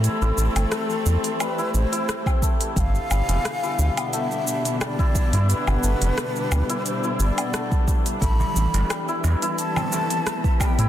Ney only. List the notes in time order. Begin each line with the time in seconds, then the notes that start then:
0.04 A4
1.40 B4
1.75 C5
2.77 F5 G5
4.13 E5
4.81 D5
5.49 B4
6.85 C5
7.20 D5
8.21 B5
9.58 A5
10.62 A5
10.66 G5